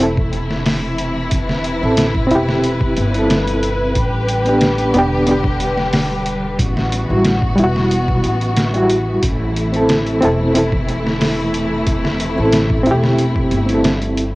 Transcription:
Already playing: upright bass E1, string section C3 E3 A3 E4
0.00 reed electric piano C4 E4 A4, closed hi-hat
0.17 kick
0.33 closed hi-hat
0.51 snare
0.66 snare, open hi-hat
0.98 closed hi-hat
1.31 string section B4, kick, closed hi-hat
1.49 snare
1.64 closed hi-hat
1.81 upright bass A1, reed electric piano C4 E4
1.85 reed electric piano A4
1.97 snare, closed hi-hat
2.15 kick
2.27 reed electric piano C4, closed hi-hat
2.31 upright bass E1, reed electric piano E4 G4
2.49 snare
2.64 closed hi-hat
2.81 kick
2.97 upright bass G1, closed hi-hat
3.11 reed electric piano C4, closed hi-hat
3.15 reed electric piano E4 A4
3.30 snare, closed hi-hat
3.47 closed hi-hat
3.63 closed hi-hat
3.95 upright bass A1, string section D3 G3 G4, kick, closed hi-hat
4.29 closed hi-hat
4.45 reed electric piano B3 D4, closed hi-hat
4.49 reed electric piano G4
4.61 snare, closed hi-hat
4.78 closed hi-hat
4.94 upright bass E1, reed electric piano B3 D4, closed hi-hat
4.99 reed electric piano G4
5.27 reed electric piano B3 D4, closed hi-hat
5.31 reed electric piano G4
5.44 kick
5.60 closed hi-hat
5.78 snare
5.93 snare, open hi-hat
6.26 closed hi-hat
6.59 upright bass A1, string section E3 B3 F#4, kick, closed hi-hat
6.77 snare
6.92 closed hi-hat
7.09 upright bass A1, reed electric piano G3 E4 F#4
7.24 snare, closed hi-hat
7.42 kick
7.55 upright bass E1, reed electric piano G3, closed hi-hat
7.60 reed electric piano E4
7.64 reed electric piano F#4
7.76 snare
7.91 closed hi-hat
8.08 upright bass B1, kick
8.24 upright bass A1, closed hi-hat
8.41 closed hi-hat
8.57 snare, closed hi-hat
8.73 reed electric piano G3 E4, closed hi-hat
8.78 reed electric piano F#4
8.90 closed hi-hat
9.23 upright bass A1, string section C3 A3 E4, kick, closed hi-hat
9.56 closed hi-hat
9.72 reed electric piano C4 E4, closed hi-hat
9.77 reed electric piano A4
9.89 snare, closed hi-hat
10.07 closed hi-hat
10.21 upright bass E1, reed electric piano C4 E4, closed hi-hat
10.25 reed electric piano A4
10.54 reed electric piano C4 E4 A4, closed hi-hat
10.72 kick
10.89 closed hi-hat
11.07 snare
11.21 snare, open hi-hat
11.54 closed hi-hat
11.87 kick, closed hi-hat
12.05 snare
12.20 closed hi-hat
12.36 upright bass A1, reed electric piano C4 E4
12.40 reed electric piano A4
12.53 snare, closed hi-hat
12.70 kick
12.83 upright bass E1, reed electric piano C4 E4, closed hi-hat
12.91 reed electric piano G4
13.04 snare
13.19 closed hi-hat
13.36 kick
13.51 upright bass G1, closed hi-hat
13.66 reed electric piano C4 E4, closed hi-hat
13.74 reed electric piano A4
13.84 snare, closed hi-hat
14.02 closed hi-hat
14.17 closed hi-hat

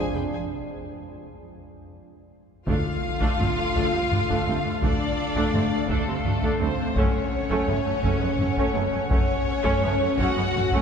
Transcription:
Already playing: trombone section C3 G#3, woodwind section G#3 C4 C5 F5, french horn section D4, viola section G#4, violin section C5 G#5
0.13 double bass section F1, cello section F2, viola section G#4, violin section B4 G5
0.32 cello section F2, viola section G#4, violin section C5 G#5
2.66 cello section D2, double bass section D2, timpani D3, woodwind section A3 D4 A4 F5, viola section A3 D4, violin section F4 F5, french horn section F4, taiko, sub drop
3.21 cello section D2, viola section A3 D4, taiko
3.39 cello section D2, double bass section D2, trombone section D3 A3, viola section G3 C4, taiko low-mid
3.57 cello section D2, viola section A3 D4
3.75 double bass section D2, cello section D2, viola section A3 D4, taiko
3.92 cello section D2, viola section G3 C4
4.11 double bass section D2, cello section D2, viola section A3 D4, taiko low-mid
4.29 cello section D2, viola section A3 D4, taiko
4.46 double bass section D2, cello section D2, trombone section D3 A3, viola section G3 C4
4.64 cello section D2, viola section A3 D4
4.82 double bass section D2, cello section D2, viola section A3 D4, violin section D4 D5, french horn section D4, taiko
5.36 cello section D2, viola section A3 D4, taiko
5.53 double bass section D2, cello section D2, trombone section D3 A3, viola section G3 C4, taiko low-mid
5.72 cello section D2, viola section A3 D4
5.89 cello section D2, double bass section D2, viola section A3 D4, violin section A3 A4, french horn section A3, taiko
6.06 cello section D2, viola section G3 C4
6.25 double bass section D2, cello section D2, viola section A3 D4, taiko low-mid
6.42 cello section D2, viola section A3 D4, taiko
6.60 cello section D2, double bass section D2, trombone section D3 A3, viola section G3 C4, violin section C4 C5, french horn section C4
6.78 cello section D2, viola section A3 D4
6.96 double bass section F#1, cello section F#2, woodwind section A3 C#4 A4 F#5, viola section A3 C#4, violin section C#4 C#5, french horn section C#4, taiko
7.50 cello section F#2, viola section A3 C#4, taiko
7.67 double bass section F#1, cello section F#2, trombone section C#3 A3, viola section G#3 B3, taiko low-mid
7.85 cello section F#2, viola section A3 C#4
8.02 double bass section F#1, cello section F#2, viola section A3 C#4, taiko
8.21 cello section F#2, viola section G#3 B3
8.39 double bass section F#1, cello section F#2, viola section A3 C#4, taiko low-mid
8.56 cello section F#2, viola section A3 C#4, taiko
8.74 double bass section F#1, cello section F#2, trombone section C#3 A3, viola section G#3 B3
8.92 cello section F#2, viola section A3 C#4
9.09 double bass section F#1, cello section F#2, viola section A3 C#4, violin section C#4 C#5, french horn section C#4, taiko
9.63 cello section F#2, viola section A3 C#4, taiko
9.82 double bass section F#1, cello section F#2, trombone section C#3 A3, viola section G#3 B3, taiko low-mid
10.00 cello section F#2, viola section A3 C#4
10.18 double bass section F#1, cello section F#2, viola section A3 C#4, french horn section F#4, violin section F#4 F#5, taiko
10.36 cello section F#2, viola section G#3 B3
10.54 double bass section F#1, cello section F#2, viola section A3 C#4, taiko low-mid
10.72 cello section F#2, viola section A3 C#4, taiko

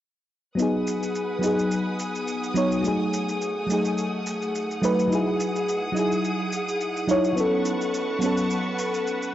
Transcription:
0.55 fm electric piano F#3 B3, string section B4 F#5 G#5 D#6, shaker
0.60 fm electric piano D#4 G#4
0.87 shaker
1.03 shaker
1.15 shaker
1.39 fm electric piano F#3 B3
1.43 fm electric piano D#4 G#4, shaker
1.59 shaker
1.71 shaker
2.00 shaker
2.15 shaker
2.28 shaker
2.44 shaker
2.54 fm electric piano F#3 B3 D#4 C#5, shaker
2.72 shaker
2.81 fm electric piano F#3 A3
2.85 string section A3, fm electric piano D#4 G#4, shaker
3.13 shaker
3.29 shaker
3.42 shaker
3.66 fm electric piano F#3 A3, shaker
3.71 fm electric piano D#4 G#4
3.85 shaker
3.98 shaker
4.27 shaker
4.42 shaker
4.55 shaker
4.71 shaker
4.82 fm electric piano F#3 A3 D#4 B4, shaker
4.99 shaker
5.08 fm electric piano F#3 D#4, string section G#4 D#6
5.12 fm electric piano E4 G#4, shaker
5.40 shaker
5.56 shaker
5.69 shaker
5.92 fm electric piano F#3 D#4
5.97 fm electric piano E4 G#4, shaker
6.12 shaker
6.25 shaker
6.53 shaker
6.69 shaker
6.81 shaker
6.97 shaker
7.07 fm electric piano F#3 D#4 E4 C#5, shaker
7.24 shaker
7.33 fm electric piano F#3 B3
7.38 fm electric piano C#4 A4, string section B4 A5 C#6, shaker
7.65 shaker
7.81 shaker
7.94 shaker
8.19 fm electric piano F#3 B3, shaker
8.23 fm electric piano C#4 A4
8.37 shaker
8.50 shaker
8.79 shaker
8.94 shaker
9.07 shaker
9.22 shaker

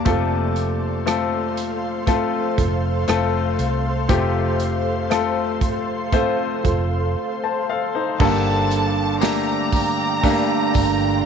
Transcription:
0.05 fingered electric bass F1, grand piano C3 A3 C4 F4 A4, nylon-string guitar F3 C4 F4, ambient pad A4 C5 F5 C6, kick, closed hi-hat
0.09 nylon-string guitar A4
0.56 closed hi-hat
1.06 grand piano A3 C4 F4 A4, cross-stick, closed hi-hat
1.57 closed hi-hat
2.07 nylon-string guitar F3 C4 F4 A4, grand piano A3 C4 F4 A4, kick, closed hi-hat
2.57 fingered electric bass F1, nylon-string guitar C4 F4 A4, kick, closed hi-hat
3.08 fingered electric bass F1, grand piano A3 C4 F4 A4, cross-stick, closed hi-hat
3.59 fingered electric bass C2, closed hi-hat
4.08 fingered electric bass F1, grand piano C3 A3 C4 F4 G4, nylon-string guitar F3 C4 F4, kick, closed hi-hat
4.12 nylon-string guitar A4
4.60 closed hi-hat
5.10 grand piano A3 C4 F4 A4, cross-stick, closed hi-hat
5.61 kick, closed hi-hat
6.12 nylon-string guitar F3 C4 F4 A4, grand piano A3 C4 F4 C5, kick, closed hi-hat
6.64 fingered electric bass F1, nylon-string guitar C4 F4 A4, kick, closed hi-hat
7.44 grand piano C5 A5
7.70 grand piano A4 F5
7.95 grand piano D#4 C5
8.18 fingered electric bass G1, nylon-string guitar G2 D3 G3 A#3 D4, grand piano G2 D3 A#3 D4 G4 A4, ambient pad D5 G5 D6, violin section A5, kick, crash, tambourine
8.70 hi-hat pedal, open hi-hat, tambourine
9.21 grand piano A3 A#3 D4 G4, violin section A#5, snare, hi-hat pedal, open hi-hat, tambourine
9.72 kick, hi-hat pedal, open hi-hat, tambourine
10.23 nylon-string guitar G2 D3 G3 A#3 D4, grand piano A3 D4 G4, ambient pad C6, kick, hi-hat pedal, open hi-hat, tambourine
10.30 grand piano A#3
10.74 fingered electric bass G1, kick, hi-hat pedal, open hi-hat, tambourine

